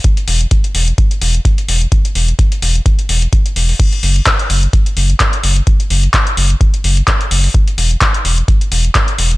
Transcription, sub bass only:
X:1
M:4/4
L:1/8
Q:"Swing 16ths" 1/4=128
K:Emix
V:1 name="Sub bass" clef=bass
z E,,, z E,,, z E,,, z E,,, | z E,,, z E,,, z E,,, z E,,, | z F,,, z F,,, z F,,, z F,,, | z F,,, z F,,, z F,,, z F,,, |
z E,,, z E,,, z E,,, z E,,, |]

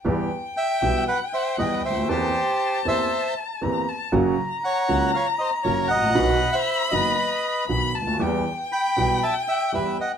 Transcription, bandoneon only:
X:1
M:4/4
L:1/16
Q:1/4=118
K:Em
V:1 name="Bandoneon"
z4 [eg]4 [Bf]2 [ce]2 [B^d]2 [ce]2 | [Gc]6 [ce]4 z6 | z4 [^cf]4 [c=f]2 [=c^d]2 [^A^c]2 [d^f]2- | [^df]3 [ce]3 [Bd]6 z4 |
z4 [gb]4 [ea]2 [eg]2 [Be]2 [^df]2 |]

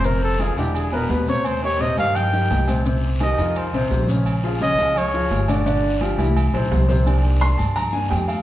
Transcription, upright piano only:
X:1
M:4/4
L:1/8
Q:1/4=171
K:Fm
V:1 name="Upright piano"
[C,Cc]2 [E,EF] [=D,=D=E]2 [=B,,=B,=B]2 [C,Cc]- | [C,Cc] [E,EG] [C,Cc] [E,EG]2 [E,EG]2 [C,Cc] | [C,Cc]2 [E,EG] [E,EF]2 [C,Cc]2 [D,Dd]- | [D,Dd] [F,FA] [D,Dd] [F,FA]2 [F,FA]2 [=D,=D=d] |
[=D,=D=d]2 [F,FG] [=E,=EG]2 [C,Cc]2 [C,Cc] | [K:Cm] z2 c' =a b _a g f |]
V:2 name="Upright piano"
z8 | z8 | z8 | z8 |
z8 | [K:Cm] [E,B,D]3 z2 [E,B,D] z2 |]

